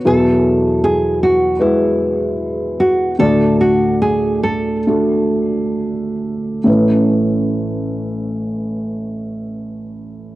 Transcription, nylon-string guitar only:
X:1
M:4/4
L:1/8
Q:1/4=70
K:A
V:1 name="Nylon-string guitar"
A2 G F E2 z F | A F G A3 z2 | z8 |]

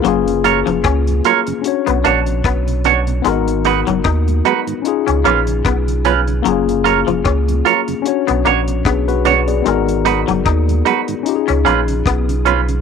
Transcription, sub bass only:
X:1
M:4/4
L:1/16
Q:"Swing 16ths" 1/4=75
K:F#
V:1 name="Sub bass" clef=bass
F,,,3 E,,, C,,2 z3 B,,, A,,,2 B,,,4 | G,,,3 F,,, D,,2 z3 C,, A,,,2 B,,,4 | F,,,3 E,,, C,,2 z3 B,,, A,,,2 B,,,4 | G,,,3 F,,, D,,2 z3 C,, A,,,2 B,,,4 |]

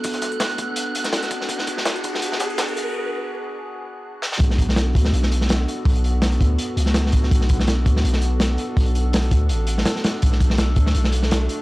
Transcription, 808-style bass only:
X:1
M:4/4
L:1/8
Q:"Swing 16ths" 1/4=165
K:Bdor
V:1 name="808-style bass" clef=bass
z8 | z8 | z8 | B,,,3 D,, B,,,3 z |
B,,,3 D,, z C,,3 | B,,,3 D,, B,,,3 z | B,,,3 D,, A,,,2 z2 | B,,,3 D,, B,,,3 z |]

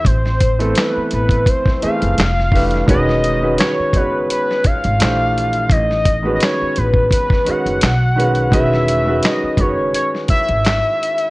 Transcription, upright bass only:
X:1
M:4/4
L:1/16
Q:"Swing 16ths" 1/4=85
K:E
V:1 name="Upright bass" clef=bass
A,,,4 z2 A,,,2 z3 F,,, =F,,,4 | E,,,4 z2 F,,,2 z3 G,,, ^A,,,4 | A,,,4 z2 A,,,2 z3 F,,, B,,,4 | E,,,4 z2 F,,,2 z3 G,,,2 z3 |]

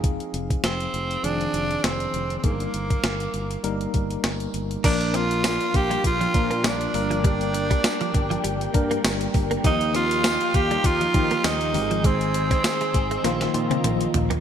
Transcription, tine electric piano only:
X:1
M:4/4
L:1/8
Q:"Swing 16ths" 1/4=100
K:Bbmix
V:1 name="Tine electric piano"
[F,CEA]2 z2 [E,F,CA]3 z | [G,B,EAB]3 z [G,B,EB]3 z | [F,B,DB]3 z2 [F,B,DB]2 [G,B,DB]- | [G,B,DB]2 z3 [G,B,DB]2 z |
[F,B,EG]3 z2 [F,B,EG]2 [E,A,CGA]- | [E,A,CGA]2 z2 [E,F,B,F] [E,F,B,F]2 z |]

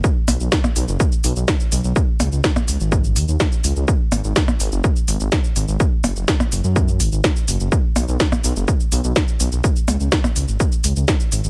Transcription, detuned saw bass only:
X:1
M:4/4
L:1/16
Q:1/4=125
K:B
V:1 name="Detuned saw bass" clef=bass
z2 B,,, B,,, z2 B,,, F,,, z2 B,,, B,,, z2 B,,, B,,, | z2 C,, C,, z2 C,, G,,,3 D,, D,, z2 C,, C,, | z2 G,,, G,,, z2 G,,, F,,, z2 G,,, G,,, z2 G,,, G,,, | z2 F,,, F,,, z2 F,,, F,,3 G,,, G,,, z2 F,,, F,,, |
z2 B,,, B,,, z2 B,,, F,,, z2 B,,, B,,, z2 B,,, B,,, | z2 C,, C,, z2 C,, G,,, z2 C,, C,, z2 G,,, G,,, |]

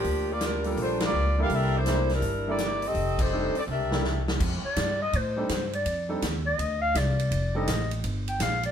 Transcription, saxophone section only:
X:1
M:4/4
L:1/8
Q:"Swing" 1/4=165
K:F
V:1 name="Saxophone section"
[F,B,DG] [B,FGd] [G,DFB]2 [A,DFc] [B,FGd]2 [DGBf] | [DGBe] [B,EGc]2 [G,DEB]2 [B,EGd]2 [CGA_e]- | [CGA_e] [A,_EGc]2 [CGAd] [DGB=e]3 z | z8 |
z8 | z8 |]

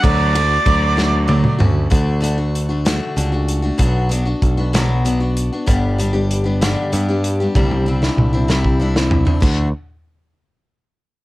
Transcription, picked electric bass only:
X:1
M:6/8
L:1/8
Q:3/8=64
K:D
V:1 name="Picked electric bass" clef=bass
D,,2 D,,3 D,, | D,,4 C,,2 | B,,,2 B,,,4 | G,,,4 G,,2 |
=C,,2 C,,4 | D,, z4 z |]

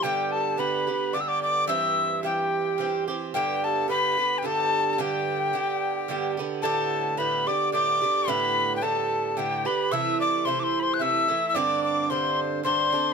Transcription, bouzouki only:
X:1
M:3/4
L:1/8
Q:"Swing" 1/4=109
K:G
V:1 name="Bouzouki"
[G,,D,B,G]2 [G,,D,B,G] [D,B,G] [G,,D,B,G]2 | [G,,E,CG]2 [G,,E,CG]2 [G,,E,CG] [E,CG] | [G,,D,B,G]2 [G,,D,B,G] [D,B,G] [G,,D,B,G]2 | [G,,D,B,G]2 [G,,D,B,G]2 [G,,D,B,G] [D,B,G] |
[A,,D,B,G]2 [A,,D,B,G] [D,B,G] [A,,D,B,G] [D,B,G] | [A,,D,B,G]2 [A,,D,B,G]2 [A,,D,B,G] [D,B,G] | [C,E,A,E]2 [C,E,A,E]2 [C,E,A,E] [E,A,E] | [G,,D,CD]2 [G,,D,CD]2 [G,,D,CD] [D,CD] |]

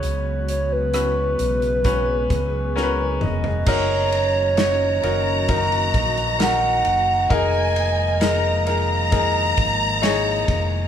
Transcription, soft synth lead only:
X:1
M:4/4
L:1/16
Q:1/4=66
K:F#
V:1 name="Soft synth lead"
c2 c B8- B3 d2 | c8 d4 f4 | d6- d d4 z3 d2 |]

